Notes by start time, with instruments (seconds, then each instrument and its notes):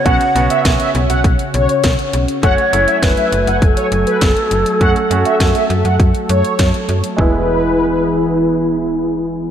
Already playing: analog synth pad C#3 F#4
0.06 fm bass B1, grand piano B3 C#4 F#4, analog synth pad C#4, analog polysynth F#5, shakuhachi F#5, kick, closed hi-hat
0.21 closed hi-hat
0.35 fm bass B1, grand piano B3 C#4 F#4, closed hi-hat
0.50 analog polysynth E5, closed hi-hat
0.65 fm bass B1, kick, snare, closed hi-hat
0.80 analog polysynth E5, closed hi-hat
0.95 fm bass B1, closed hi-hat
1.10 fm bass B1, analog polysynth F#5, closed hi-hat
1.24 fm bass B1, kick, closed hi-hat
1.39 closed hi-hat
1.54 fm bass B1, analog polysynth C#5, closed hi-hat
1.69 closed hi-hat
1.84 fm bass B1, kick, snare, closed hi-hat
1.99 closed hi-hat
2.13 fm bass B1, closed hi-hat
2.28 closed hi-hat
2.43 fm bass F#1, analog synth pad F#3 A3 G#5, grand piano A3 C#4 F#4, shakuhachi C#5, analog polysynth F#5, kick, closed hi-hat
2.58 closed hi-hat
2.73 fm bass F#1, grand piano A3 C#4 E4, closed hi-hat
2.88 analog polysynth E5, closed hi-hat
3.03 fm bass F#1, shakuhachi B4, kick, snare, closed hi-hat
3.17 analog polysynth E5, closed hi-hat
3.32 fm bass F#1, closed hi-hat
3.47 fm bass F#1, analog polysynth F#5, closed hi-hat
3.62 fm bass F#1, shakuhachi A4 B4, kick, closed hi-hat
3.77 analog polysynth C#5, closed hi-hat
3.92 fm bass F#1, closed hi-hat
4.07 analog polysynth B4, closed hi-hat
4.21 fm bass F#1, kick, snare, closed hi-hat
4.37 closed hi-hat
4.51 fm bass F#1, closed hi-hat
4.66 closed hi-hat
4.81 fm bass F#2, grand piano A3 C#4 F#4, analog synth pad A4, analog polysynth F#5, kick, closed hi-hat
4.96 closed hi-hat
5.11 fm bass F#2, grand piano A3 C#4 F#4, closed hi-hat
5.25 analog polysynth E5, closed hi-hat
5.40 fm bass F#2, kick, snare, closed hi-hat
5.55 analog polysynth E5, closed hi-hat
5.70 fm bass F#2, closed hi-hat
5.85 fm bass F#2, analog polysynth F#5, closed hi-hat
6.00 fm bass F#2, kick, closed hi-hat
6.15 closed hi-hat
6.29 fm bass F#2, analog polysynth C#5, closed hi-hat
6.45 closed hi-hat
6.59 fm bass F#2, kick, snare, closed hi-hat
6.74 closed hi-hat
6.89 fm bass F#2, closed hi-hat
7.04 closed hi-hat
7.16 fm bass E1, analog synth pad E3 B3 G#4, grand piano G#3 B3 E4, shakuhachi E4, analog polysynth B4, kick